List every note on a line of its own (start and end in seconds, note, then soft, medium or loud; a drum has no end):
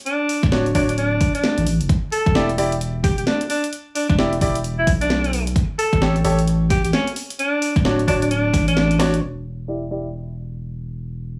0.06 0.43 D4 medium
0.06 closed hi-hat medium
0.29 open hi-hat loud
0.43 0.73 D1 loud
0.43 kick loud
0.43 snare soft
0.43 closed hi-hat soft
0.52 0.65 D4 medium
0.52 0.65 F#4 medium
0.52 0.65 C#5 medium
0.52 snare loud
0.66 closed hi-hat soft
0.75 1.19 D1 medium
0.75 0.84 D4 medium
0.75 0.88 D4 medium
0.75 0.88 F#4 medium
0.75 0.88 C#5 loud
0.75 kick medium
0.75 open hi-hat medium
0.89 0.95 D4 medium
0.89 closed hi-hat medium
0.98 1.32 D4 loud
0.98 closed hi-hat medium
1.21 kick loud
1.21 open hi-hat loud
1.35 1.67 D4 medium
1.35 closed hi-hat medium
1.44 snare loud
1.58 1.66 A1 medium
1.58 closed hi-hat soft
1.66 1.79 A1 medium
1.66 open hi-hat medium
1.80 1.88 F#1 medium
1.80 closed hi-hat medium
1.89 kick loud
1.89 closed hi-hat medium
2.12 2.49 A4 medium
2.12 open hi-hat loud
2.26 2.57 E1 loud
2.26 kick loud
2.26 closed hi-hat soft
2.35 2.48 E4 medium
2.35 2.48 G4 medium
2.35 2.48 D5 medium
2.35 snare loud
2.49 closed hi-hat soft
2.58 3.15 E1 medium
2.58 2.71 E4 medium
2.58 2.71 G4 medium
2.58 2.71 D5 medium
2.58 open hi-hat medium
2.72 closed hi-hat medium
2.81 closed hi-hat medium
3.04 3.13 G4 medium
3.04 kick loud
3.04 open hi-hat loud
3.18 3.26 E1 medium
3.18 3.24 G4 medium
3.18 closed hi-hat medium
3.27 3.43 D4 medium
3.27 snare loud
3.41 closed hi-hat medium
3.50 3.66 D4 medium
3.50 open hi-hat medium
3.64 closed hi-hat medium
3.73 closed hi-hat medium
3.96 4.05 D4 medium
3.96 open hi-hat loud
4.09 4.40 E1 loud
4.09 4.15 D4 medium
4.09 kick medium
4.09 snare soft
4.09 closed hi-hat soft
4.18 4.31 E4 medium
4.18 4.31 G4 medium
4.18 4.31 D5 medium
4.18 snare loud
4.33 closed hi-hat soft
4.41 4.86 E1 medium
4.41 4.54 E4 medium
4.41 4.54 G4 medium
4.41 4.54 D5 loud
4.41 kick medium
4.41 open hi-hat medium
4.55 closed hi-hat medium
4.64 closed hi-hat medium
4.78 4.91 E4 medium
4.87 5.54 B1 medium
4.87 kick loud
4.87 open hi-hat loud
5.01 5.47 D4 medium
5.01 closed hi-hat medium
5.10 snare loud
5.24 closed hi-hat medium
5.33 open hi-hat medium
5.47 closed hi-hat medium
5.56 kick loud
5.56 closed hi-hat medium
5.79 6.16 A4 loud
5.79 open hi-hat loud
5.93 6.23 A1 loud
5.93 kick loud
5.93 closed hi-hat soft
6.02 6.14 G4 medium
6.02 6.14 A4 medium
6.02 6.14 C#5 loud
6.02 snare loud
6.16 closed hi-hat soft
6.24 6.82 A1 medium
6.24 6.37 G4 medium
6.24 6.37 A4 medium
6.24 6.37 C#5 loud
6.24 open hi-hat medium
6.39 closed hi-hat medium
6.47 closed hi-hat medium
6.70 6.79 G4 medium
6.70 kick loud
6.70 open hi-hat loud
6.84 6.92 A1 medium
6.84 6.90 G4 medium
6.84 closed hi-hat medium
6.93 7.10 C#4 medium
6.93 snare loud
7.07 closed hi-hat medium
7.16 open hi-hat loud
7.30 closed hi-hat medium
7.39 7.76 D4 medium
7.39 closed hi-hat medium
7.62 open hi-hat loud
7.76 8.06 D1 loud
7.76 kick medium
7.76 snare soft
7.76 closed hi-hat soft
7.85 7.97 D4 medium
7.85 7.97 F#4 medium
7.85 7.97 C#5 medium
7.85 snare loud
7.99 closed hi-hat soft
8.08 8.52 D1 medium
8.08 8.17 D4 medium
8.08 8.20 D4 medium
8.08 8.20 F#4 medium
8.08 8.20 C#5 loud
8.08 kick medium
8.08 open hi-hat loud
8.22 8.28 D4 medium
8.22 closed hi-hat medium
8.31 8.65 D4 medium
8.31 closed hi-hat medium
8.54 9.21 A1 medium
8.54 kick loud
8.54 snare soft
8.54 open hi-hat loud
8.68 8.99 D4 medium
8.68 closed hi-hat medium
8.77 snare loud
8.91 closed hi-hat medium
8.99 9.12 D4 loud
8.99 9.12 F#4 medium
8.99 9.12 C#5 loud
8.99 snare medium
8.99 open hi-hat loud
9.14 closed hi-hat medium
9.22 11.39 E1 medium
9.22 crash medium
9.68 9.81 E4 medium
9.68 9.81 G4 medium
9.68 9.81 D5 medium
9.91 10.04 E4 medium
9.91 10.04 G4 medium
9.91 10.04 D5 medium